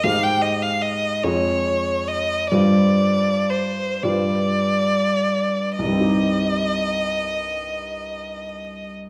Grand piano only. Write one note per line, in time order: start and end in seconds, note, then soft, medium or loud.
0.04 1.20 G#2 soft
0.04 1.20 G#3 soft
0.04 1.20 G4 soft
0.04 1.21 C5 soft
1.24 2.48 F2 soft
1.24 2.48 G#3 soft
1.24 2.48 F4 soft
1.24 2.48 C#5 soft
2.52 3.99 G2 soft
2.52 3.99 G3 soft
2.52 3.99 F4 soft
2.52 3.99 C5 soft
4.03 5.75 G2 soft
4.03 5.75 G3 soft
4.03 5.75 F4 soft
4.03 5.75 B4 soft
5.79 8.94 C2 soft
5.84 8.99 G2 soft
5.84 9.03 G3 soft
5.92 9.07 C4 soft
5.96 9.10 D#4 soft
6.00 9.10 G4 soft